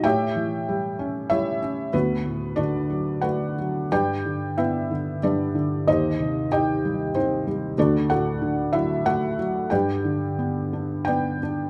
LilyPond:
<<
  \new Staff \with { instrumentName = "Felt piano" } { \time 3/4 \key g \major \tempo 4 = 93 <g' cis'' e'' g''>2 <e' cis'' e''>4 | <b fis' b'>4 <d' fis' d''>4 <fis' b' fis''>4 | <g' b' d'' g''>4 <e' b' e''>4 <d' b' d''>4 | <ees' g' c'' ees''>4 <g' ees'' g''>4 <c' ees' c''>4 |
<d' fis' a' d''>8 <fis' a' fis''>4 <e' e''>8 <fis' a' fis''>4 | <g' b' d'' g''>2 <b' d'' g''>4 | }
  \new Staff \with { instrumentName = "Felt piano" } { \clef bass \time 3/4 \key g \major a,8 e8 g8 cis'8 g8 cis'8 | d,8 a,8 d8 fis8 a8 fis8 | g,8 d8 b8 d8 g,8 d8 | ees,8 c8 ees8 g8 ees8 g8 |
d,8 a,8 d8 fis8 a8 fis8 | g,8 d8 b8 d'8 b8 d'8 | }
>>